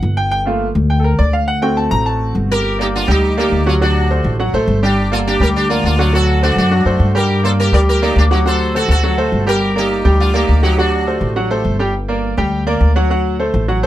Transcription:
Already playing: grand piano F#5
0.03 upright bass G1
0.17 grand piano G5
0.31 grand piano G5
0.45 grand piano A3 A#3 F4
0.75 upright bass D2
0.90 grand piano G5
1.00 grand piano A4
1.04 grand piano A#4
1.19 upright bass D2, grand piano D5
1.33 grand piano F5
1.48 grand piano F#5
1.62 grand piano A3 C4 F#4 G5
1.77 grand piano A5
1.91 upright bass A1, grand piano A#5
2.06 grand piano A5
2.35 upright bass G1
2.52 sitar G4 A#4
2.79 grand piano A#3 A#4 D5, sitar D#4 G4
2.96 sitar D4 F4
3.08 upright bass D2, grand piano G3 G4 G5, sitar D#4 G4
3.37 grand piano A#3 A#4 D5, sitar D#4 G4
3.52 upright bass D2
3.66 grand piano F#3 F#4 F#5, sitar D4 F4
3.81 grand piano F#3 F#4 F#5, sitar D4 F#4
4.10 grand piano A3 A4 C5
4.24 upright bass A1
4.39 grand piano F#3 F#4 F#5
4.53 upright bass A1, grand piano A3 A4 C5
4.67 upright bass G1
4.83 grand piano G3 G4 G5, sitar D4 G4
5.12 grand piano A#3 A#4 D5, sitar F4 A4
5.27 sitar D4 G4
5.40 upright bass D2, grand piano G3 G4 G5, sitar G4 A#4
5.56 sitar D4 G4
5.70 grand piano A#3 A#4 D5, sitar D4 F4
5.84 upright bass D2, sitar D4 F4
5.99 grand piano F#3 F#4 F#5, sitar D4 F4
6.13 grand piano F#3 F#4 F#5, sitar F#4 A4
6.42 grand piano A3 A4 C5, sitar D4 F#4
6.56 upright bass F#2, sitar D4 F#4
6.71 grand piano F#3 F#4 F#5
6.85 upright bass F#2, grand piano A3 A4 C5
7.00 upright bass G2
7.15 grand piano G3 G4 G5, sitar G4 A#4
7.43 grand piano A#3 A#4 D5, sitar A4 C5
7.60 sitar G4 A#4
7.72 upright bass D2, grand piano G3 G4 G5, sitar A#4 D5
7.89 sitar G4 A#4
8.02 grand piano A#3 A#4 D5, sitar D#4 G4
8.16 upright bass D2, sitar D4 G4
8.31 grand piano F#3 F#4 F#5, sitar D#4 G4
8.45 grand piano F#3 F#4 F#5, sitar A4 C5
8.74 grand piano A3 A4 C5, sitar F#4 A4
8.88 upright bass D2, sitar F#4 A4
9.03 grand piano F#3 F#4 F#5
9.18 grand piano A3 A4 C5
9.32 upright bass G1
9.46 grand piano G3 G4 G5, sitar G4 A#4
9.76 grand piano A#3 A#4 D5, sitar D#4 G4
10.05 upright bass D2, grand piano G3 G4 G5
10.20 sitar D4 F4
10.34 grand piano A#3 A#4 D5, sitar D#4 G4
10.49 upright bass D2
10.63 grand piano F#3 F#4 F#5, sitar D#4 G4
10.78 grand piano F#3 F#4 F#5, sitar D4 F#4
11.07 grand piano A3 A4 C5
11.21 upright bass A1
11.36 grand piano F#3 F#4 F#5
11.50 grand piano A3 A4 C5
11.65 upright bass G1
11.79 grand piano G3 G4 G5
12.08 grand piano A#3 A#4 D5
12.37 upright bass D2, grand piano G3 G4 G5
12.67 grand piano A#3 A#4 D5
12.81 upright bass D2
12.96 grand piano F#3 F#4 F#5
13.10 grand piano F#3 F#4 F#5
13.39 grand piano A3 A4 C5
13.54 upright bass A1
13.68 grand piano F#3 F#4 F#5
13.83 grand piano A3 A4 C5

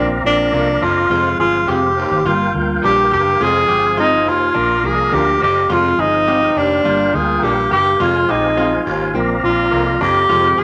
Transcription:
Already playing: fingered electric bass A#1, tine electric piano F3 A#3 D4 F4 A#4, clean electric guitar C4, tonewheel organ D5 F5 A#5
0.24 fingered electric bass A#1, tine electric piano F3 A#3 D4 F4 A#4, tenor saxophone D4
0.53 fingered electric bass C2, baritone saxophone F2, clean electric guitar A#3 D4 F4 A#4
0.81 fingered electric bass F#1, baritone saxophone F2, clean electric guitar D4, tenor saxophone F4
1.10 fingered electric bass F1, baritone saxophone F2, tine electric piano F3 G#3 C4 F4 G#4, clean electric guitar F4, tonewheel organ C5
1.39 fingered electric bass G1, tenor saxophone F4, clean electric guitar G#4
1.67 fingered electric bass F1, clean electric guitar G#3 C4 F4 G4 G#4, tenor saxophone G4
1.97 baritone saxophone D#2
2.11 fingered electric bass G#1
2.25 fingered electric bass G1, tine electric piano G3 A#3 D4 F4 G4, clean electric guitar F4, tenor saxophone F4, tonewheel organ A#4 G5
2.54 fingered electric bass D2, tine electric piano G3 A#3 D4 F4 A#4
2.82 fingered electric bass A#1, baritone saxophone G2, clean electric guitar F3 A#3 D4 G4, tenor saxophone G4
3.11 fingered electric bass F#1, baritone saxophone G2, clean electric guitar G4, tenor saxophone G4
3.40 fingered electric bass F1, baritone saxophone F2, tine electric piano F3 G#3 C4 F4 G#4, clean electric guitar F4, tenor saxophone G#4, tonewheel organ C5 G#5
3.68 fingered electric bass G1, clean electric guitar G4
3.97 clean electric guitar G#3 C4 F4 G#4, tenor saxophone D#4
4.26 fingered electric bass F1, baritone saxophone D#2, tenor saxophone F4
4.54 fingered electric bass A#1, tine electric piano F3 A#3 D4 F4 A#4, clean electric guitar D4, tonewheel organ D5 A#5
4.83 fingered electric bass C2, tine electric piano F3 A#3 D4 F4 A#4, tenor saxophone G#4
5.12 fingered electric bass D2, baritone saxophone D2, clean electric guitar A#3 D4 F4 A#4, tenor saxophone G4
5.41 fingered electric bass F#1, baritone saxophone F2, clean electric guitar C4, tenor saxophone G4
5.69 fingered electric bass F1, baritone saxophone F2, tine electric piano F3 G#3 C4 F4 G#4, clean electric guitar F4, tenor saxophone F4, tonewheel organ C5
5.98 fingered electric bass G1, tenor saxophone D#4, clean electric guitar G#4
6.27 clean electric guitar G#3 C4 F4 G4 G#4
6.56 fingered electric bass F1, baritone saxophone D#2, tenor saxophone D4
6.84 fingered electric bass G1, tine electric piano G3 A#3 D4 F4 G4, clean electric guitar F4, tonewheel organ A#4 G5
7.13 fingered electric bass D2, tine electric piano G3 A#3 D4 F4 A#4, tenor saxophone G#4
7.42 fingered electric bass A#1, baritone saxophone G2, clean electric guitar F3 A#3 D4 G4, tenor saxophone G4
7.71 fingered electric bass F#1, baritone saxophone G2, clean electric guitar G4, tenor saxophone G4
8.00 fingered electric bass F1, baritone saxophone F2, tine electric piano F3 G#3 C4 F4 G#4, clean electric guitar F4, tenor saxophone F4, tonewheel organ C5 G#5
8.29 fingered electric bass A#1, tenor saxophone D#4, clean electric guitar G4
8.57 clean electric guitar G#3 C4 F4 G#4
8.86 fingered electric bass G#1, baritone saxophone D#2
9.14 fingered electric bass A#1, tine electric piano F3 A#3 D4 F4 A#4, clean electric guitar C4, tonewheel organ D5 A#5
9.42 fingered electric bass A#1, tine electric piano F3 A#3 D4 F4 C5, tenor saxophone F4
9.71 fingered electric bass C2, baritone saxophone F2, clean electric guitar A#3 D4 F4 A#4
10.01 fingered electric bass F#1, baritone saxophone F2, clean electric guitar D4, tenor saxophone G4
10.29 fingered electric bass F1, baritone saxophone F2, tine electric piano F3 G#3 C4 F4 G#4, clean electric guitar F4, tonewheel organ C5
10.58 fingered electric bass G1, clean electric guitar G#4, tenor saxophone G#4

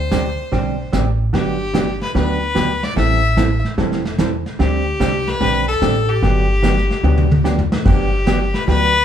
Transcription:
Already playing: upright bass D2, fiddle C5
0.11 hollow-body jazz guitar D3 G3 C4 D4 G4, kick, snare, hi-hat pedal
0.52 upright bass B1, hollow-body jazz guitar D3 G3 C4 D4 G4, brush sweep, kick, snare
0.93 upright bass A1, hollow-body jazz guitar D3 G3 C4 D4 G4, kick, snare, hi-hat pedal
1.33 upright bass G1, hollow-body jazz guitar D3 F#3 B3 D4 G4, fiddle G4, brush sweep, kick, snare
1.74 hollow-body jazz guitar D3 F#3 B3 D4 G4, kick, snare, hi-hat pedal
2.01 fiddle B4, snare
2.15 upright bass D2, hollow-body jazz guitar D3 F#3 B3 D4 G4, fiddle B4, brush sweep, kick, snare
2.55 hollow-body jazz guitar D3 F#3 B3 D4 G4, kick, snare, hi-hat pedal
2.83 fiddle D5, snare
2.96 upright bass A1, hollow-body jazz guitar E3 G3 C4 E4 A4, fiddle E5, brush sweep, kick, snare
3.37 hollow-body jazz guitar E3 G3 C4 E4 A4, kick, snare, hi-hat pedal
3.64 snare
3.78 upright bass E1, hollow-body jazz guitar E3 G3 C4 E4 A4, brush sweep, kick, snare
3.92 snare
4.05 snare
4.18 hollow-body jazz guitar E3 G3 C4 E4 A4, kick, snare, hi-hat pedal
4.46 snare
4.59 upright bass D2, hollow-body jazz guitar D3 G3 C4 D4 G4, fiddle G4, brush sweep, kick, snare
5.00 upright bass C2, hollow-body jazz guitar D3 G3 C4 D4 G4, kick, snare, hi-hat pedal
5.27 fiddle B4, snare
5.41 upright bass B1, hollow-body jazz guitar D3 G3 C4 D4 G4, brush sweep, kick, snare
5.68 fiddle A4
5.82 upright bass A1, hollow-body jazz guitar D3 G3 C4 D4 G4, kick, snare, hi-hat pedal
6.09 fiddle G4
6.22 upright bass G1, hollow-body jazz guitar D3 F#3 B3 D4 G4, brush sweep, kick, snare
6.63 hollow-body jazz guitar D3 F#3 B3 D4 G4, kick, snare, hi-hat pedal
6.77 snare
6.91 snare
7.03 upright bass D2, hollow-body jazz guitar D3 F#3 B3 D4 G4, high tom
7.18 high tom
7.31 high tom
7.44 hollow-body jazz guitar D3 F#3 B3 D4 G4, snare, hi-hat pedal
7.59 floor tom
7.72 snare
7.85 upright bass G1, hollow-body jazz guitar D3 F#3 B3 D4 G4, fiddle G4, brush sweep, kick, snare, crash
8.27 hollow-body jazz guitar D3 F#3 B3 D4 G4, kick, snare, hi-hat pedal
8.54 fiddle B4, snare
8.67 upright bass D2, hollow-body jazz guitar D3 F#3 B3 D4 G4, fiddle B4, brush sweep, kick, snare

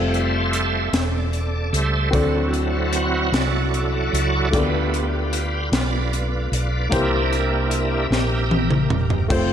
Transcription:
Already playing: fingered electric bass F1, tonewheel organ G3 A3 F4 A4 C5 E5, upright piano C4 F4 A4 E5
0.14 closed hi-hat
0.53 closed hi-hat
0.86 tonewheel organ E5
0.93 fingered electric bass E1, tonewheel organ A4 D5, snare, closed hi-hat
1.33 closed hi-hat
1.73 fingered electric bass C#2, tonewheel organ G3 A3 C5 E5, closed hi-hat
2.11 fingered electric bass D2, upright piano D3 C4 F#4 A4 D5, tonewheel organ F#3 C4 E4 F#4, kick, closed hi-hat
2.15 tonewheel organ A4
2.54 closed hi-hat
2.93 tonewheel organ F#5, closed hi-hat
3.32 fingered electric bass C2, tonewheel organ F#4 A4 D5, snare, closed hi-hat
3.74 closed hi-hat
4.13 fingered electric bass C#2, closed hi-hat
4.51 fingered electric bass D2, upright piano D3 A3 F4 G4 D5, tonewheel organ A3 B3 F4 G4, kick, closed hi-hat
4.56 upright piano B3, tonewheel organ B4
4.94 closed hi-hat
5.33 closed hi-hat
5.72 fingered electric bass B1, tonewheel organ F4 B4 D5, snare, closed hi-hat
6.13 closed hi-hat
6.52 fingered electric bass B1, tonewheel organ D5, closed hi-hat
6.89 fingered electric bass C2, upright piano C3 A#3 E4 G4 C5, tonewheel organ A#3 D4 E4 G4 A#4 E5, kick, closed hi-hat
7.33 closed hi-hat
7.71 closed hi-hat
8.10 fingered electric bass A#1, tonewheel organ G4 A#4 E5, snare
8.51 high tom
8.71 mid tom
8.90 fingered electric bass E1, mid tom
9.10 floor tom
9.28 fingered electric bass F1, tonewheel organ F3 A3 C4, french horn section F3 A3 C4 F4, upright piano A3 C4 F4 C5, kick, crash

